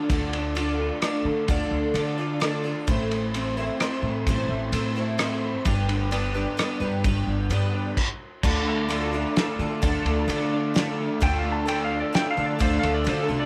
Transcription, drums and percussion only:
0.10 kick loud
0.10 ride medium
0.33 ride medium
0.56 ride medium
1.02 cross-stick medium
1.02 ride medium
1.48 kick medium
1.48 ride medium
1.95 ride medium
2.41 cross-stick medium
2.41 ride medium
2.88 kick loud
2.88 ride medium
3.11 ride medium
3.34 ride medium
3.80 cross-stick medium
3.80 ride medium
4.27 kick loud
4.27 ride medium
4.73 ride medium
5.19 cross-stick medium
5.19 ride medium
5.65 kick loud
5.65 ride medium
5.89 ride medium
6.12 ride medium
6.59 cross-stick medium
6.59 ride medium
7.04 kick loud
7.04 ride medium
7.50 ride medium
7.97 kick medium
7.97 crash medium
8.43 kick loud
8.43 crash medium
8.90 ride medium
9.37 snare medium
9.37 ride medium
9.83 kick loud
9.83 ride medium
10.06 ride soft
10.29 ride medium
10.76 snare medium
10.76 ride medium
11.22 kick loud
11.22 ride medium
11.68 ride medium
12.15 snare medium
12.15 ride medium
12.60 kick loud
12.60 ride medium
12.83 ride medium
13.07 ride medium

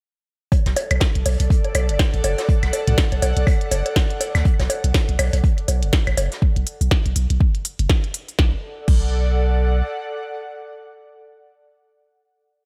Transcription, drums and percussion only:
0.52 kick loud
0.52 closed hi-hat medium
0.52 low woodblock soft
0.66 snare medium
0.66 closed hi-hat soft
0.76 closed hi-hat medium
0.76 open hi-hat medium
0.76 high bongo medium
0.91 closed hi-hat medium
0.91 high woodblock medium
0.91 low woodblock soft
1.00 kick loud
1.00 snare loud
1.00 snare medium
1.00 closed hi-hat medium
1.15 closed hi-hat soft
1.26 open hi-hat loud
1.26 open hi-hat medium
1.26 high bongo soft
1.26 low woodblock soft
1.40 closed hi-hat medium
1.40 closed hi-hat soft
1.50 kick loud
1.50 closed hi-hat medium
1.65 closed hi-hat soft
1.65 low woodblock soft
1.75 closed hi-hat medium
1.75 open hi-hat medium
1.75 high bongo medium
1.75 high woodblock medium
1.89 closed hi-hat medium
1.99 kick loud
1.99 snare loud
1.99 closed hi-hat medium
1.99 low woodblock soft
2.14 closed hi-hat soft
2.24 closed hi-hat medium
2.24 open hi-hat medium
2.24 high bongo medium
2.38 snare medium
2.38 open hi-hat soft
2.38 low woodblock soft
2.49 kick loud
2.49 closed hi-hat medium
2.63 snare soft
2.63 closed hi-hat soft
2.63 high woodblock medium
2.73 closed hi-hat medium
2.73 open hi-hat medium
2.73 high bongo soft
2.73 low woodblock soft
2.88 closed hi-hat medium
2.88 mid tom medium
2.98 kick loud
2.98 snare loud
2.98 closed hi-hat medium
3.12 closed hi-hat soft
3.12 low woodblock soft
3.22 closed hi-hat medium
3.22 open hi-hat medium
3.22 high bongo medium
3.37 closed hi-hat medium
3.47 kick loud
3.47 closed hi-hat medium
3.47 high woodblock medium
3.47 low woodblock soft
3.61 closed hi-hat soft
3.71 closed hi-hat medium
3.71 open hi-hat loud
3.71 high bongo medium
3.86 closed hi-hat medium
3.86 low woodblock soft
3.96 kick loud
3.96 snare loud
3.96 closed hi-hat medium
4.10 closed hi-hat soft
4.20 closed hi-hat medium
4.20 open hi-hat loud
4.20 high bongo soft
4.20 low woodblock soft
4.35 snare soft
4.35 open hi-hat soft
4.35 high woodblock medium
4.45 kick loud
4.45 closed hi-hat medium
4.59 snare medium
4.59 closed hi-hat soft
4.59 low woodblock soft
4.70 closed hi-hat medium
4.70 open hi-hat medium
4.70 high bongo medium
4.84 closed hi-hat medium
4.94 kick loud
4.94 snare medium
4.94 snare loud
4.94 closed hi-hat loud
4.94 low woodblock soft
5.09 closed hi-hat soft
5.19 open hi-hat medium
5.19 open hi-hat loud
5.19 high bongo medium
5.19 high woodblock medium
5.33 closed hi-hat medium
5.33 closed hi-hat soft
5.33 low woodblock soft
5.44 kick loud
5.44 closed hi-hat medium
5.58 closed hi-hat soft
5.68 closed hi-hat medium
5.68 open hi-hat loud
5.68 high bongo soft
5.68 low woodblock soft
5.83 closed hi-hat medium
5.93 kick loud
5.93 snare loud
5.93 closed hi-hat medium
6.07 closed hi-hat soft
6.07 high woodblock medium
6.07 low woodblock soft
6.17 closed hi-hat medium
6.17 open hi-hat loud
6.17 high bongo medium
6.32 snare medium
6.32 open hi-hat soft
6.42 kick loud
6.56 closed hi-hat soft
6.67 open hi-hat medium
6.81 open hi-hat soft
6.91 kick loud
6.91 snare medium
7.06 closed hi-hat soft
7.16 open hi-hat loud
7.30 closed hi-hat medium
7.40 kick loud
7.55 closed hi-hat soft
7.65 open hi-hat loud
7.79 closed hi-hat medium
7.90 kick loud
7.90 snare medium
8.04 closed hi-hat soft
8.14 open hi-hat loud
8.28 open hi-hat soft
8.39 kick loud
8.39 snare medium
8.88 kick loud
8.88 crash medium

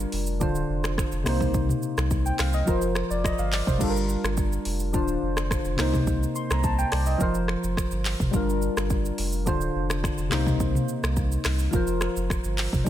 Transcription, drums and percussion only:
0.00 shaker soft
0.12 open hi-hat medium
0.27 shaker medium
0.41 kick loud
0.41 shaker medium
0.55 shaker medium
0.84 finger snap medium
0.84 cross-stick loud
0.84 shaker medium
0.98 finger snap medium
0.98 kick medium
0.98 cross-stick loud
0.98 shaker medium
1.12 shaker soft
1.26 finger snap medium
1.26 cross-stick loud
1.26 open hi-hat medium
1.26 shaker medium
1.41 kick loud
1.41 mid tom loud
1.41 shaker medium
1.54 kick loud
1.54 shaker medium
1.69 mid tom medium
1.69 shaker medium
1.83 shaker medium
1.98 finger snap medium
1.98 cross-stick loud
1.98 shaker medium
2.11 kick loud
2.11 shaker medium
2.26 shaker medium
2.39 finger snap medium
2.39 cross-stick loud
2.39 clap loud
2.39 open hi-hat medium
2.39 shaker medium
2.53 shaker medium
2.67 kick loud
2.67 shaker medium
2.82 shaker medium
2.95 finger snap medium
2.95 cross-stick loud
2.95 shaker soft
3.11 shaker medium
3.24 finger snap medium
3.24 kick medium
3.24 cross-stick loud
3.24 shaker medium
3.38 shaker soft
3.53 clap loud
3.53 open hi-hat medium
3.53 shaker medium
3.67 kick loud
3.67 mid tom loud
3.67 shaker medium
3.81 kick loud
3.81 crash loud
3.81 shaker medium
3.97 shaker medium
4.09 shaker medium
4.24 finger snap medium
4.24 cross-stick loud
4.24 shaker medium
4.37 kick loud
4.37 shaker medium
4.53 shaker soft
4.65 open hi-hat medium
4.80 shaker medium
4.94 kick loud
4.94 shaker medium
5.08 shaker medium
5.37 finger snap medium
5.37 cross-stick loud
5.37 shaker medium
5.51 finger snap medium
5.51 kick loud
5.51 cross-stick loud
5.51 shaker medium
5.65 shaker soft
5.79 finger snap medium
5.79 cross-stick loud
5.79 clap loud
5.79 open hi-hat medium
5.79 shaker medium
5.94 kick medium
5.94 mid tom loud
5.94 shaker medium
6.07 kick loud
6.07 shaker medium
6.23 shaker medium
6.35 shaker medium
6.51 finger snap medium
6.51 cross-stick loud
6.51 shaker medium
6.64 kick loud
6.64 shaker medium
6.79 shaker soft
6.92 finger snap medium
6.92 cross-stick loud
6.92 open hi-hat medium
7.06 shaker medium
7.20 kick loud
7.20 shaker medium
7.34 shaker medium
7.48 finger snap medium
7.48 cross-stick loud
7.64 shaker medium
7.77 finger snap medium
7.77 kick medium
7.77 cross-stick loud
7.77 shaker medium
7.91 shaker soft
8.05 clap loud
8.05 open hi-hat medium
8.05 shaker medium
8.20 kick medium
8.20 mid tom loud
8.20 shaker medium
8.34 kick loud
8.34 shaker medium
8.50 shaker medium
8.62 shaker medium
8.77 finger snap medium
8.77 cross-stick loud
8.77 shaker medium
8.90 kick loud
8.90 shaker medium
9.05 shaker soft
9.18 open hi-hat medium
9.32 shaker medium
9.47 kick loud
9.47 shaker medium
9.61 shaker medium
9.90 finger snap medium
9.90 cross-stick loud
9.90 shaker medium
10.04 finger snap medium
10.04 kick loud
10.04 cross-stick loud
10.04 shaker medium
10.18 shaker soft
10.32 finger snap medium
10.32 cross-stick loud
10.32 clap loud
10.32 open hi-hat medium
10.32 shaker medium
10.46 kick loud
10.46 mid tom loud
10.46 shaker medium
10.60 kick loud
10.60 shaker medium
10.75 mid tom medium
10.75 shaker medium
10.89 shaker medium
11.04 finger snap medium
11.04 cross-stick loud
11.04 shaker medium
11.17 kick loud
11.17 shaker medium
11.32 shaker soft
11.45 finger snap medium
11.45 cross-stick loud
11.45 clap loud
11.45 open hi-hat medium
11.45 shaker medium
11.59 shaker medium
11.73 kick loud
11.73 shaker medium
11.87 shaker medium
12.01 finger snap medium
12.01 cross-stick loud
12.01 shaker soft
12.16 shaker medium
12.30 finger snap medium
12.30 kick loud
12.30 cross-stick loud
12.30 shaker medium
12.44 shaker soft
12.58 clap loud
12.58 open hi-hat medium
12.58 shaker medium
12.73 kick medium
12.73 mid tom loud
12.73 shaker medium
12.86 shaker medium

